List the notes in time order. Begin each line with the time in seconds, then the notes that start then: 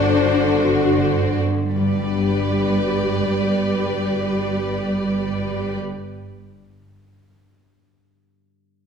Already playing: G1 G2 D3 C4 D4 F#4 C5 D5
0.24 D4
0.59 C4 F#4
0.97 D3
1.35 C4
1.73 G1 G2 G3 G4 B4 D5
1.80 G3
1.87 B3
1.94 D4
2.01 G4
2.08 D5